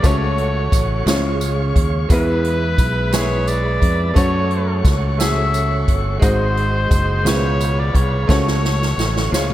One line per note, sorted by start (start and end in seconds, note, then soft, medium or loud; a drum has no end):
0.02 0.69 C#2 loud
0.02 1.03 C#3 medium
0.02 0.80 A3 medium
0.02 1.07 A3 medium
0.02 0.80 C#4 medium
0.02 1.05 C#4 medium
0.02 0.81 F#4 medium
0.02 1.07 F#4 medium
0.02 0.11 C5 medium
0.02 0.81 C#5 loud
0.02 kick loud
0.02 closed hi-hat medium
0.02 tambourine medium
0.07 1.09 C#5 medium
0.12 1.05 C#5 medium
0.38 closed hi-hat soft
0.72 1.04 A1 medium
0.72 kick medium
0.72 closed hi-hat medium
0.72 tambourine medium
1.06 1.71 C#2 loud
1.06 2.06 C#3 medium
1.06 1.83 G#3 medium
1.06 2.08 G#3 medium
1.06 2.09 C#4 medium
1.06 1.83 C#4 medium
1.06 2.10 F4 medium
1.06 1.84 F4 medium
1.06 2.10 C#5 medium
1.06 1.85 C#5 medium
1.06 snare loud
1.06 closed hi-hat medium
1.06 tambourine medium
1.41 closed hi-hat medium
1.41 tambourine medium
1.76 2.07 D#2 medium
1.76 kick medium
1.76 closed hi-hat medium
2.09 2.75 E2 medium
2.09 3.10 E3 medium
2.09 2.86 G#3 medium
2.09 4.12 G#3 medium
2.09 4.12 B3 soft
2.09 2.87 B3 medium
2.09 4.12 E4 medium
2.09 2.87 E4 medium
2.09 4.12 B4 medium
2.09 2.88 B4 medium
2.09 3.15 B4 medium
2.09 kick loud
2.09 closed hi-hat medium
2.09 tambourine soft
2.44 closed hi-hat soft
2.78 3.78 B1 medium
2.78 kick medium
2.78 closed hi-hat medium
2.78 tambourine soft
3.11 3.89 G#3 medium
3.11 3.89 B3 medium
3.11 3.90 E4 medium
3.11 3.91 G#4 medium
3.11 3.50 C#5 loud
3.11 snare loud
3.11 closed hi-hat medium
3.11 tambourine medium
3.47 4.16 D5 loud
3.47 closed hi-hat medium
3.47 tambourine medium
3.82 4.13 F2 medium
3.82 kick medium
3.82 closed hi-hat medium
4.14 4.81 F#2 medium
4.14 4.91 A3 medium
4.14 6.18 A3 medium
4.14 4.92 C#4 medium
4.14 6.18 C#4 medium
4.14 6.18 F#4 soft
4.14 4.93 F#4 medium
4.14 4.23 C5 medium
4.14 4.81 C#5 loud
4.14 4.93 C#5 medium
4.14 kick loud
4.14 closed hi-hat medium
4.14 tambourine soft
4.23 6.22 C#5 medium
4.51 closed hi-hat soft
4.85 5.84 C#2 medium
4.85 kick loud
4.85 snare soft
4.85 closed hi-hat medium
4.85 tambourine medium
5.17 5.95 A3 medium
5.17 5.96 C#4 medium
5.17 5.96 F#4 medium
5.17 5.97 G#4 medium
5.17 5.93 E5 loud
5.17 snare loud
5.17 closed hi-hat medium
5.17 tambourine medium
5.54 closed hi-hat medium
5.54 tambourine medium
5.88 6.20 G1 medium
5.88 kick medium
5.88 closed hi-hat medium
6.19 6.87 G#1 medium
6.19 7.21 G#2 medium
6.19 6.98 G#3 medium
6.19 7.24 G#3 medium
6.19 6.99 D#4 medium
6.19 7.26 D#4 medium
6.19 6.99 F#4 medium
6.19 7.26 F#4 soft
6.19 6.29 B4 soft
6.19 kick loud
6.19 closed hi-hat medium
6.19 tambourine soft
6.23 7.00 C5 medium
6.23 7.29 C5 loud
6.28 7.29 C5 medium
6.57 closed hi-hat soft
6.91 7.23 F#1 medium
6.91 kick loud
6.91 closed hi-hat medium
6.91 tambourine medium
7.24 7.90 C#2 loud
7.24 8.25 B2 medium
7.24 8.01 G#3 medium
7.24 8.29 G#3 medium
7.24 8.02 C#4 medium
7.24 8.26 C#4 medium
7.24 8.29 F4 medium
7.24 8.03 F4 medium
7.24 8.29 B4 medium
7.24 8.03 B4 medium
7.24 snare loud
7.24 closed hi-hat medium
7.24 tambourine medium
7.28 7.81 C#5 loud
7.60 closed hi-hat medium
7.60 tambourine medium
7.80 7.98 D5 medium
7.94 8.26 C2 medium
7.94 8.29 C#5 medium
7.94 kick medium
7.94 closed hi-hat medium
8.27 8.94 C#2 loud
8.27 9.28 C#3 medium
8.27 9.05 A3 medium
8.27 9.32 A3 medium
8.27 9.31 C#4 medium
8.27 9.06 C#4 medium
8.27 9.32 F#4 soft
8.27 9.06 F#4 medium
8.27 9.32 C#5 medium
8.27 9.54 C#5 loud
8.27 9.07 C#5 loud
8.27 kick medium
8.27 snare medium
8.27 tambourine medium
8.48 snare soft
8.65 snare medium
8.82 snare medium
8.98 9.30 A1 medium
8.98 snare medium
8.98 tambourine soft
9.16 snare medium
9.31 9.54 C#2 loud
9.31 9.54 C#3 medium
9.31 9.54 G#3 medium
9.31 9.54 C#4 medium
9.31 9.54 F4 medium
9.31 9.39 C5 medium
9.31 9.54 C#5 medium
9.31 snare medium
9.31 tambourine medium
9.39 9.54 C#5 medium
9.50 mid tom medium